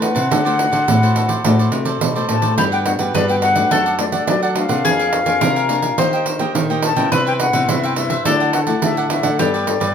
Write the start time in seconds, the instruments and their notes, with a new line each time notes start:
Already playing: nylon-string guitar E3 A3, cavaquinho B4 C5 A5
0.02 nylon-string guitar C4 E4 B4, flute F#5, pandeiro
0.15 nylon-string guitar C3, cavaquinho B4 C5 A5, pandeiro
0.30 nylon-string guitar D3 A3 C4 F#4, cavaquinho F#4 A4 C5 D5, pandeiro
0.45 nylon-string guitar A3 C4 F#4, cavaquinho A4 C5 D5, pandeiro
0.58 nylon-string guitar A3 C4 F#4, muted cavaquinho stroke, pandeiro
0.72 nylon-string guitar D3, cavaquinho A4 C5 D5, pandeiro
0.88 nylon-string guitar A2, cavaquinho F#4 A4 C5 D5, pandeiro
1.02 nylon-string guitar A3 C4 F#4, cavaquinho A4 C5 D5, pandeiro
1.15 cavaquinho F#4 A4 C5 D5, pandeiro
1.28 cavaquinho A4 C5 D5, pandeiro
1.44 nylon-string guitar A2 D3 A3 C4 F#4, cavaquinho F#4 A4 C5 D5, pandeiro
1.59 cavaquinho A4 C5 D5, pandeiro
1.72 nylon-string guitar C3 A3 C4 F#4, muted cavaquinho stroke, pandeiro
1.85 cavaquinho A4 C5 D5, pandeiro
2.01 nylon-string guitar A2 B2, pandeiro
2.15 nylon-string guitar A3 C4 F#4, cavaquinho A4 C5 D5, pandeiro
2.29 nylon-string guitar A2 A3 C4 F#4, flute A5, pandeiro
2.42 cavaquinho A4 C5 D5, pandeiro
2.57 nylon-string guitar G2 G3 B3 D4 F#4, cavaquinho D4 G4 B4 F#5, mandolin G4, flute B5, pandeiro
2.72 cavaquinho G4 B4 F#5, flute G5, pandeiro
2.85 nylon-string guitar B3 D4 F#4, flute F#5, muted cavaquinho stroke, pandeiro
2.99 nylon-string guitar G2 B3 D4 F#4, cavaquinho G4 B4 F#5, pandeiro
3.14 nylon-string guitar G2 D3, cavaquinho D4 G4 B4 F#5, mandolin B4, flute D5, pandeiro
3.28 nylon-string guitar B3 D4 F#4, cavaquinho G4 B4 F#5, flute G5, pandeiro
3.42 cavaquinho D4 G4 B4 F#5, flute F#5, pandeiro
3.55 nylon-string guitar A3 D4 F#4, cavaquinho G4 B4 F#5, pandeiro
3.71 nylon-string guitar F#2 F#3, cavaquinho D4 A4 D5 F#5, mandolin A4, pandeiro
3.86 cavaquinho A4 D5 F#5, pandeiro
3.99 nylon-string guitar A3 D4 F#4, flute D5, muted cavaquinho stroke, pandeiro
4.12 cavaquinho A4 D5 F#5, flute D5, pandeiro
4.27 nylon-string guitar F#3, flute D5, pandeiro
4.42 cavaquinho A4 D5 F#5, flute D5, pandeiro
4.55 nylon-string guitar A3 D4 F#4, flute F5, pandeiro
4.69 nylon-string guitar C3 A#3 D4 G#4, cavaquinho A4 D5 F#5, pandeiro
4.84 nylon-string guitar F2 F3, cavaquinho D4 A#4 F5 G#5, mandolin G#4, pandeiro
4.99 cavaquinho A#4 F5 G#5, pandeiro
5.13 muted cavaquinho stroke, pandeiro
5.26 nylon-string guitar F2 A#3 D4 G#4, cavaquinho A#4 F5 G#5, pandeiro
5.41 nylon-string guitar C3 F3, cavaquinho D4 A#4 F5 G#5, mandolin A#4, pandeiro
5.56 cavaquinho A#4 F5 G#5, pandeiro
5.69 nylon-string guitar A#3 D4 G#4, cavaquinho D4 A#4 F5 G#5, pandeiro
5.82 cavaquinho A#4 F5 G#5, pandeiro
5.98 nylon-string guitar D#3 A#3 D#4 G4, cavaquinho G4 A#4 D#5 G5, mandolin C5, pandeiro
6.13 cavaquinho A#4 D#5 G5, pandeiro
6.26 muted cavaquinho stroke, pandeiro
6.39 nylon-string guitar A#3 D#4 G4, cavaquinho A#4 D#5 G5, pandeiro
6.55 nylon-string guitar A#2 D#3, pandeiro
6.70 nylon-string guitar A#3 D#4 G4, cavaquinho A#4 D#5 G5, pandeiro
6.82 flute A5, pandeiro
6.96 nylon-string guitar C#3 G3 B3 E4, cavaquinho A#4 D#5 G5, pandeiro
7.12 nylon-string guitar C3, cavaquinho E4 B4 C5 E5, mandolin B4, flute B5, pandeiro
7.26 cavaquinho B4 C5 E5, flute G5, pandeiro
7.39 flute F#5, muted cavaquinho stroke, pandeiro
7.53 nylon-string guitar C3 G3 B3 E4, cavaquinho B4 C5 E5, pandeiro
7.68 nylon-string guitar G2 C3, cavaquinho E4 B4 C5 E5, flute E5, pandeiro
7.83 cavaquinho B4 C5 E5, flute G5, pandeiro
7.96 nylon-string guitar G3 B3 E4, cavaquinho E4 B4 C5 E5, flute E5, pandeiro
8.10 cavaquinho B4 C5 E5, pandeiro
8.25 nylon-string guitar D3 F#3 A3 E4, cavaquinho E4 A4 D5 F#5, mandolin A4, flute D5, pandeiro
8.40 cavaquinho A4 D5 F#5, pandeiro
8.53 flute F#5, muted cavaquinho stroke, pandeiro
8.67 nylon-string guitar F#3 A3 E4, cavaquinho A4 D5 F#5, pandeiro
8.82 nylon-string guitar A2 D3, flute E5, pandeiro
8.97 cavaquinho A4 D5 F#5, pandeiro
9.10 nylon-string guitar F#3 A3 E4, flute E5, pandeiro
9.23 nylon-string guitar D3, cavaquinho A4 D5 F#5, pandeiro
9.39 nylon-string guitar G2 G3 B3 D4 A4, cavaquinho G4 A4 B4 D5, mandolin G4, flute D5, pandeiro
9.54 cavaquinho A4 B4 D5, pandeiro
9.67 nylon-string guitar B3 D4 A4, muted cavaquinho stroke, pandeiro
9.80 nylon-string guitar G2, cavaquinho A4 B4 D5, pandeiro